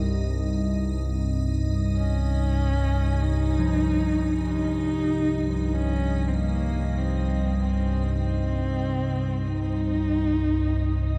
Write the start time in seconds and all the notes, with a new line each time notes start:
Already playing: C2 G2 D#4 D#5
1.95 C#4
3.21 D#4
3.59 F3
4.48 D#4
5.67 D#4
5.73 C#4
6.28 C4
6.35 A#3
6.97 C4
7.59 C4
8.19 C4
9.47 D#4